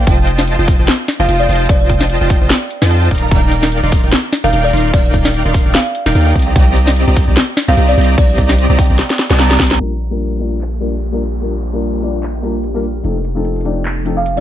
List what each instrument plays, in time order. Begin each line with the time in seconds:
0.07 808-style bass F1, supersaw synth F4 C5 D#5 G5 A5, kalimba G5, kick, closed hi-hat
0.27 closed hi-hat
0.39 snare
0.47 closed hi-hat
0.59 808-style bass F1, supersaw synth F4 C5 D#5 G5 A5
0.68 kick, open hi-hat
0.79 808-style bass F1, supersaw synth F4 C5 D#5 G5 A5
0.88 snare, closed hi-hat
1.08 snare, closed hi-hat
1.20 808-style bass F1, supersaw synth F4 C5 D#5 G5 A5, kalimba F5
1.29 808-style bass F1, supersaw synth F4 C5 D#5 G5 A5, closed hi-hat
1.40 kalimba D5
1.49 808-style bass F1, supersaw synth F4 C5 D#5 G5 A5, closed hi-hat
1.53 closed hi-hat
1.56 closed hi-hat
1.69 808-style bass F1, supersaw synth F4 C5 D#5, kalimba D5, kick, closed hi-hat
1.81 kalimba D5
1.89 kick, closed hi-hat
2.01 snare
2.10 closed hi-hat
2.21 808-style bass F1, supersaw synth F4 C5 D#5 G5 A5
2.30 kalimba G5, kick, open hi-hat
2.41 808-style bass F1, supersaw synth F4 C5 D#5 G5 A5
2.50 snare, closed hi-hat
2.70 closed hi-hat
2.82 808-style bass F2, supersaw synth F4 C5 D#5 G5 A5, snare
2.91 kalimba A5, closed hi-hat
3.02 kalimba A5
3.11 808-style bass D#1, supersaw synth D#4 A#4 D5 F5 A#5, kick, closed hi-hat
3.15 closed hi-hat
3.18 closed hi-hat
3.22 kalimba A#5
3.31 808-style bass D#1, supersaw synth D#4 A#4 D5 F5 G5, kick, closed hi-hat, crash
3.52 closed hi-hat
3.63 snare
3.72 closed hi-hat
3.83 808-style bass D#1, supersaw synth D#4 A#4 D5 F5 C6
3.92 kick, open hi-hat
4.04 808-style bass D#1, supersaw synth D#4 A#4 D5 F5 G5
4.12 snare, closed hi-hat
4.33 snare, closed hi-hat
4.44 808-style bass D#1, supersaw synth D#4 A#4 D5 F5 G5, kalimba F5
4.53 808-style bass D#1, supersaw synth D#4 A#4 D5 F5 G5, closed hi-hat
4.64 kalimba D5
4.73 808-style bass D#1, supersaw synth D#4 A#4 D5 F5 C6, closed hi-hat
4.77 closed hi-hat
4.80 closed hi-hat
4.93 kalimba D5, supersaw synth F5 G5, kick, closed hi-hat, crash
5.05 kalimba D5
5.14 kick, closed hi-hat
5.25 snare
5.34 closed hi-hat
5.45 808-style bass D#1, supersaw synth D#4 A#4 D5 F5 C6
5.54 kick, open hi-hat
5.66 808-style bass D#1, supersaw synth D#4 A#4 D5 F5 G5
5.75 kalimba F5, snare, closed hi-hat
5.95 closed hi-hat
6.06 808-style bass D#1, supersaw synth D#4 A#4 D5 F5 G5, snare
6.15 808-style bass D#2, supersaw synth D#4 A#4 D5 F5 G5, closed hi-hat
6.27 kalimba G5
6.35 808-style bass C2, supersaw synth C4 G4 D5 D#5 A#5, kick, closed hi-hat
6.39 closed hi-hat
6.42 closed hi-hat
6.47 kalimba G5
6.56 808-style bass C2, supersaw synth C4 G4 D5 D#5 A#5, kalimba G5, kick, closed hi-hat, crash
6.76 closed hi-hat
6.87 snare
6.96 closed hi-hat
7.07 808-style bass C2, supersaw synth C4 G4 D5 D#5 A#5
7.17 kick, open hi-hat
7.28 808-style bass C2, supersaw synth C4 G4 D5 D#5 A#5
7.37 snare, closed hi-hat
7.57 snare, closed hi-hat
7.68 808-style bass C2, supersaw synth C4 G4 D5 D#5 A#5, kalimba F5
7.77 808-style bass C2, supersaw synth C4 G4 D5 D#5 A#5, closed hi-hat
7.89 kalimba D5
7.97 808-style bass C2, supersaw synth C4 G4 D5 D#5 A#5, closed hi-hat
8.01 closed hi-hat
8.04 closed hi-hat
8.18 808-style bass C2, kalimba D5, kick, closed hi-hat, crash
8.29 kalimba D5
8.38 kick, closed hi-hat
8.49 snare
8.58 closed hi-hat
8.70 808-style bass C2, supersaw synth C4 G4 D5 D#5 A#5
8.79 kalimba G5, kick, open hi-hat
8.90 808-style bass C2, supersaw synth C4 G4 D5 D#5 A#5
8.99 snare, closed hi-hat
9.10 snare
9.19 snare, closed hi-hat
9.30 808-style bass C2, supersaw synth C4 G4 D5 D#5 A5, snare
9.39 kalimba A#5, snare, closed hi-hat
9.51 kalimba A#5, snare
9.60 808-style bass C2, supersaw synth C4 C6, kick, snare, closed hi-hat
9.63 closed hi-hat
9.66 closed hi-hat
9.71 kalimba A#5, snare
9.79 808-style bass A#1, felt piano G3 A#3 D4 F4 A#4, ambient pad A#3 D4 G4, closed hi-hat, crash, downlifter
10.00 closed hi-hat
10.10 felt piano G3 A#3 D4 F4 A#4
10.20 closed hi-hat
10.32 closed hi-hat
10.36 felt piano G3 A#3, closed hi-hat
10.41 felt piano D4 F4 D5, closed hi-hat
10.61 clap, closed hi-hat
10.80 felt piano G3 A#3 D4 F4 A#4, closed hi-hat
11.02 closed hi-hat
11.12 felt piano G3 A#3 D4 F4 A#4, closed hi-hat
11.17 closed hi-hat
11.22 closed hi-hat
11.41 felt piano G3 A#3 D4 F4 A#4, closed hi-hat
11.62 closed hi-hat
11.73 felt piano G3 A#3 D4 F4 A#4
11.83 closed hi-hat
11.94 closed hi-hat
11.98 felt piano G3, closed hi-hat
12.03 felt piano A#3 D4 F4 D5, closed hi-hat
12.23 clap, closed hi-hat
12.43 felt piano G3 A#3 D4 F4 A#4, closed hi-hat
12.64 closed hi-hat
12.74 felt piano G3 A#3 D4 F4 A#4, closed hi-hat
12.80 closed hi-hat
12.84 closed hi-hat
13.03 808-style bass F1, felt piano F3 A3 C4 D#4 A4, ambient pad F3 C4 D#4 A4, closed hi-hat
13.25 closed hi-hat
13.35 felt piano F3 A3 C4 D#4 A4
13.45 closed hi-hat
13.56 closed hi-hat
13.61 felt piano F3 A3, closed hi-hat
13.65 felt piano C4 D#4 D5, closed hi-hat
13.85 clap, closed hi-hat
14.05 felt piano F3 A3 C4 D#4 A4, closed hi-hat
14.17 kalimba F5
14.26 closed hi-hat
14.36 felt piano F3 A3 C4, kalimba D5, closed hi-hat